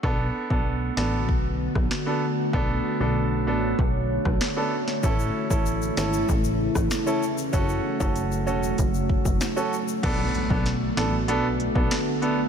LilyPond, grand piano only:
\new Staff \with { instrumentName = "Grand piano" } { \time 4/4 \key b \minor \tempo 4 = 96 <b d' a'>8. <b d' a'>8. <b d' a'>8 r4 r16 <b d' a'>16 r8 | <b d' a'>8. <b d' a'>8. <b d' a'>8 r4 r16 <b d' a'>16 r8 | <cis' e' a'>8. <cis' e' a'>8. <cis' e' a'>8 r4 r16 <cis' e' a'>16 r8 | <cis' fis' a'>8. <cis' fis' a'>8. <cis' fis' a'>8 r4 r16 <cis' fis' a'>16 r8 |
<b d' a'>8. <b d' a'>16 r8 <b d' a'>16 r16 <b d' a'>16 r8 <b d' a'>16 r8 <b d' a'>16 r16 | }